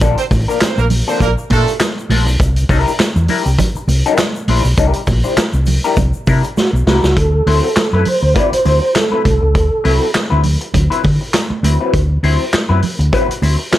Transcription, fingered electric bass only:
0.01 0.14 A#1 loud
0.31 0.44 A1 loud
0.62 muted fingered electric bass stroke soft
0.78 1.01 A#1 medium
1.20 1.33 A#1 medium
1.50 1.64 A#2 medium
2.10 2.26 A#1 loud
2.26 2.37 B1 medium
2.40 2.63 C2 loud
2.69 2.82 C2 medium
2.99 muted fingered electric bass stroke medium
3.16 3.26 E2 medium
3.46 3.56 C2 medium
3.75 muted fingered electric bass stroke soft
3.87 4.01 C2 medium
4.48 4.61 A#1 medium
4.64 4.75 B1 medium
4.77 4.91 C2 loud
5.07 5.20 A#1 loud
5.37 muted fingered electric bass stroke soft
5.53 5.77 C2 medium
5.97 6.10 C2 loud
6.27 6.40 C3 loud
6.73 6.84 B1 loud
6.87 7.00 C2 loud
7.03 7.14 C#2 medium
7.17 7.40 D2 loud
7.46 7.59 D2 loud
7.76 muted fingered electric bass stroke soft
7.93 8.03 F#2 medium
8.22 8.33 D2 medium
8.52 muted fingered electric bass stroke soft
8.66 8.79 D2 medium
9.25 9.38 C2 medium
9.42 9.55 C#2 medium
9.55 9.68 D2 loud
9.85 9.98 C2 medium
10.15 muted fingered electric bass stroke soft
10.32 10.55 D2 medium
10.74 10.87 D2 loud
11.05 11.17 D3 medium
11.50 muted fingered electric bass stroke soft
11.63 11.76 D2 loud
11.93 12.17 D2 loud
12.23 12.36 D2 loud
12.53 muted fingered electric bass stroke soft
12.69 12.80 F#2 medium
12.99 13.09 D2 medium
13.29 muted fingered electric bass stroke soft
13.42 13.55 D2 medium

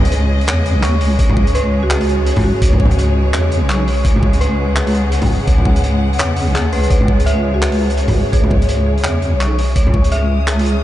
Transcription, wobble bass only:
0.00 0.49 C#2 loud
0.48 0.77 E2 loud
0.76 0.85 B1 medium
0.83 1.03 D#2 medium
1.01 1.18 C#2 loud
1.19 2.53 C#2 loud
2.62 3.35 C#2 loud
3.33 3.63 E2 loud
3.62 4.04 B1 medium
4.05 5.39 C#2 loud
5.47 6.20 C#2 loud
6.19 6.49 E2 loud
6.47 6.56 B1 medium
6.55 6.74 D#2 medium
6.72 6.89 C#2 loud
6.91 8.25 C#2 loud
8.33 9.06 C#2 loud
9.05 9.34 E2 loud
9.33 9.75 B1 medium
9.76 10.84 C#2 loud

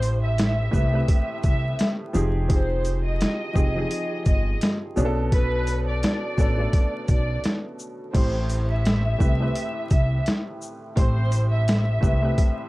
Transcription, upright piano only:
0.00 0.71 A2 medium
0.00 0.72 A3 medium
0.00 0.72 C4 medium
0.00 0.73 G4 medium
0.00 0.74 B4 medium
0.00 0.60 C5 medium
0.71 0.90 A2 medium
0.71 0.90 A3 medium
0.71 0.90 C4 medium
0.71 0.91 G4 medium
0.71 0.91 B4 medium
0.92 2.09 A2 medium
0.92 2.10 A3 medium
0.92 2.10 C4 medium
0.92 2.10 G4 medium
0.92 2.11 B4 medium
2.13 2.44 F3 loud
2.13 2.45 C4 medium
2.13 2.45 D#4 medium
2.13 2.45 G4 loud
2.13 2.46 G#4 loud
2.48 3.40 F3 medium
2.48 3.41 C4 medium
2.48 3.41 D#4 medium
2.48 3.41 G4 medium
2.48 3.42 G#4 medium
3.53 3.72 F3 medium
3.53 3.72 C4 medium
3.53 3.72 D#4 medium
3.53 3.73 G4 medium
3.53 3.73 G#4 medium
3.75 4.92 F3 medium
3.75 4.92 C4 medium
3.75 4.93 D#4 medium
3.75 4.93 G4 medium
3.75 4.93 G#4 medium
4.96 6.17 B2 loud
4.96 6.17 B3 medium
4.96 6.17 C#4 medium
4.96 6.18 D4 medium
4.96 5.05 G#4 medium
5.05 6.21 A4 loud
6.37 6.55 B2 medium
6.37 6.55 B3 medium
6.37 6.55 C#4 medium
6.37 6.56 D4 medium
6.37 6.56 A4 medium
6.57 7.74 B2 medium
6.57 7.75 A3 medium
6.57 7.74 B3 medium
6.57 7.75 D4 medium
6.57 7.75 A4 medium
8.13 9.06 A2 medium
8.13 9.06 A3 medium
8.13 9.06 C4 medium
8.13 9.07 G4 medium
8.13 9.07 C5 medium
9.18 9.37 A2 medium
9.18 9.37 A3 medium
9.18 9.37 C4 medium
9.18 9.38 G4 medium
9.18 9.38 B4 medium
9.40 10.56 A2 medium
9.40 10.57 A3 medium
9.40 10.57 C4 medium
9.40 10.57 G4 medium
9.40 10.58 B4 medium
10.96 11.88 A2 medium
10.96 11.88 A3 medium
10.96 11.89 C4 medium
10.96 11.89 G4 medium
10.96 11.89 C5 medium
12.00 12.19 A2 medium
12.00 12.19 A3 medium
12.00 12.20 C4 medium
12.00 12.20 G4 medium
12.00 12.20 B4 medium
12.22 12.69 A2 medium
12.22 12.69 A3 medium
12.22 12.69 C4 medium
12.22 12.69 G4 medium
12.22 12.69 B4 medium

